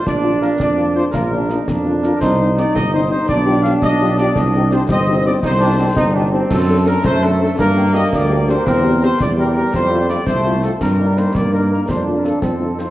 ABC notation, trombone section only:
X:1
M:6/8
L:1/8
Q:3/8=112
K:Bb
V:1 name="Trombone section"
D6 | F D E D3 | E6 | D6- |
D3 C3 | E D C E D C- | C3 A,3 | B,6 |
C3 G,3- | G,3 A,3 | G,3 B,3 | D3 C3 |]